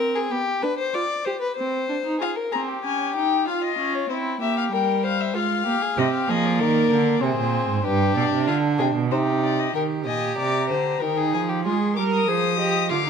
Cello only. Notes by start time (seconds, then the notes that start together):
5.97 C3
6.28 F3
6.59 D#3
6.90 D3
7.22 C3
7.37 A#2
7.68 G#2
7.84 G2
8.16 B2
8.32 C3
8.47 D3
8.79 C3
8.95 B2
9.11 C3
9.75 D#3
10.07 A#2
10.38 C3
10.70 D3
11.02 D#3
11.33 F3
11.65 G#3
11.96 G3
12.28 F3
12.91 D3